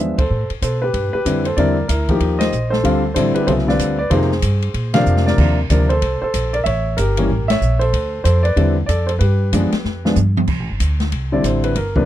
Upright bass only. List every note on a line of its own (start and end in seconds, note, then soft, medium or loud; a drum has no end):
0.00 0.15 E2 medium
0.18 0.29 E2 medium
0.30 0.49 A2 medium
0.50 muted upright bass stroke soft
0.62 0.93 B2 medium
0.93 1.12 G2 medium
1.14 muted upright bass stroke soft
1.25 1.56 F2 medium
1.57 1.88 E2 medium
1.89 2.20 D2 medium
2.20 2.51 D#2 medium
2.52 2.83 A#1 medium
2.84 3.15 D2 medium
3.16 3.34 A1 medium
3.36 muted upright bass stroke soft
3.47 3.78 C2 medium
3.79 4.10 D2 medium
4.11 4.42 F2 medium
4.42 4.74 G2 medium
4.74 5.05 A#2 medium
5.06 5.37 F2 medium
5.38 5.69 D#2 medium
5.70 6.01 D2 medium
6.02 6.20 C2 medium
6.22 muted upright bass stroke soft
6.34 6.65 A#1 medium
6.66 6.97 A1 medium
6.98 7.29 G1 medium
7.30 7.60 A1 medium
7.61 7.92 A#1 medium
7.93 8.24 D2 medium
8.25 8.56 F2 medium
8.56 8.88 E2 medium
8.88 9.20 F2 medium
9.20 9.51 G2 medium
9.52 9.71 F#2 medium
9.72 muted upright bass stroke soft
9.84 10.15 F2 medium
10.16 10.47 G2 medium
10.48 10.60 C2 medium
10.60 10.70 A1 soft
10.70 10.79 G1 medium
10.80 11.11 D2 medium
11.12 11.43 C2 medium
11.43 11.75 A1 medium
11.76 12.05 G1 medium